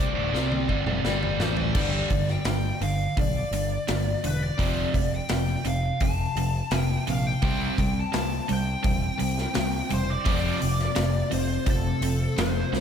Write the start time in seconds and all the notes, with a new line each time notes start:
Already playing: C3 G3 D5
0.00 C2
0.14 D1 D2 A2
0.33 C2 C3 G3 C4, snare
0.52 high tom
0.68 G1 G2 D3, kick
0.86 F1 F2 C3, mid tom
1.05 G1 G2 D3 G3, snare
1.23 mid tom
1.38 A1 A2 E3 A3 C5, snare
1.57 D5, floor tom
1.75 G1 G2 D3 G3, kick, crash
2.10 G1 G2 D3, kick, open hi-hat
2.28 G5, snare
2.45 G1 G2 D3, snare, open hi-hat
2.81 G1 G2 D3 F5, open hi-hat
3.17 B1 G2 D3 D5, kick, open hi-hat
3.51 G1 G2 D3, open hi-hat
3.88 G1 G2 D3, snare, open hi-hat
4.24 E1 G2 D3 B4, open hi-hat
4.43 D5
4.58 F1 F2 C3 F3, kick, open hi-hat
4.94 F1 F2 C3, kick, open hi-hat
5.14 G5
5.29 F1 F2 C3, snare, open hi-hat
5.65 F1 F2 C3 F5, open hi-hat
6.00 F1 F2 C3 A5, kick, open hi-hat
6.36 F1 F2 C3, open hi-hat
6.71 F1 F2 C3, snare, open hi-hat
6.78 G5
7.07 A#1 F2 C3 F5, open hi-hat
7.27 G5
7.42 C2 C3 G3 C4 E4 C5, kick, open hi-hat
7.78 C2 C3 G3, kick, open hi-hat
8.00 A5
8.13 C2 C3 G3, snare, open hi-hat
8.48 C2 C3 G3, open hi-hat
8.52 G5
8.83 E1 C3 G3, kick, open hi-hat
9.18 C2 C3 G3, open hi-hat
9.38 snare
9.54 C2 C3 G3, snare, open hi-hat
9.90 E1 C3 G3, open hi-hat
9.94 C5
10.10 D5
10.25 F1 F2 C3 F3 A3 C4 F4 C5, kick, open hi-hat
10.59 F1 F2 C3, open hi-hat
10.80 snare
10.95 F1 F2 C3, snare, open hi-hat
11.30 F1 F2 C3 C5, open hi-hat
11.66 F1 F2 C3 A4, kick, open hi-hat
12.01 F1 F2 C3, open hi-hat
12.36 F1 F2 C3 C5, snare, open hi-hat
12.72 C2 F2 C3, snare